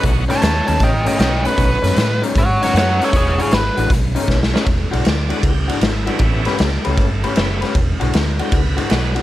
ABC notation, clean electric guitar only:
X:1
M:4/4
L:1/8
Q:"Swing" 1/4=156
K:Bdor
V:1 name="Clean electric guitar"
[B,,A,C^D] [B,,A,CD] z [B,,A,CD] z [B,,A,CD] z [B,,A,CD] | z [B,,A,C^D] z [B,,A,CD] z [B,,A,CD] z [B,,A,CD] | z [E,G,DF] z [E,G,DF] z [B,,A,C^D] z [B,,A,CD] | z [E,G,DF] z [E,G,DF] z [E,G,DF] z [E,G,DF] |
z [A,C=GB] z [A,CGB] z [A,CGB] z [A,CGB] | z [E,G,DF] z [E,G,DF] z [E,G,DF] z [E,G,DF] |]